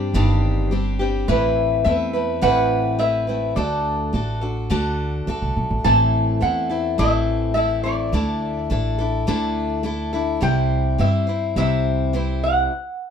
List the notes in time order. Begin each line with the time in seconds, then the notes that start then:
Already playing: G2 G3 C4 D4 G4 C5
0.14 G1 G2 D#3 G3 C4 D4 G4
0.71 G3 C4 D4 G4
0.99 G3 C4 D4 G4
1.28 A1 A2 E3 A3 C4 E4 B4
1.84 E2 A3 C4 E4 B4 E5
2.13 A3 C4 E4 B4
2.41 A1 A2 E3 A3 C4 E4 B4 F#5
2.99 A3 C4 E4 B4 E5
3.27 A3 C4 E4 B4
3.56 D2 D3 A3 D4 F#4 A4 D5
4.13 A1 A3 D4 F#4 A4
4.41 D4 F#4 A4
4.70 D2 D3 A3 D4 F#4 A4
5.27 D2 A3 D4 F#4 A4
5.42 C2
5.56 B1
5.70 A1
5.84 A1 A2 E3 A3 C4 E4 A4 A5
6.41 E2 A3 C4 E4 A4 F#5
6.69 A3 C4 E4 A4
6.98 A1 A2 E3 A3 C4 E4 A4 E5
7.54 A3 C4 E4 A4 E5
7.83 A3 C4 E4 A4 D5
8.12 D2 D3 A3 D4 E4 A4
8.70 A1 A3 D4 E4 A4
8.98 D4 E4 A4
9.27 D2 D3 A3 D4 E4 A4
9.83 A3 D4 E4 A4
10.13 D4 E4 A4
10.41 C2 C3 G3 C4 E4 C5 G5
10.98 G2 G3 C4 E4 C5 E5
11.27 C4 E4 C5
11.56 C2 C3 G3 C4 E4 C5 E5
12.13 G3 C4 E4 C5
12.44 F#5